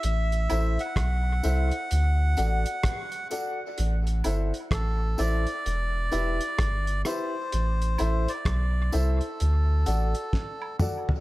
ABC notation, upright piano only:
X:1
M:4/4
L:1/8
Q:"Swing 16ths" 1/4=64
K:Ador
V:1 name="Upright piano"
z [EAce] z [EAce] z [FAdf] z [FAdf] | z [EAce] z [EAce] z [EGBe] z [EGBe] | z [EAce] z [EAce] z [FAdf] z [FAdf] |]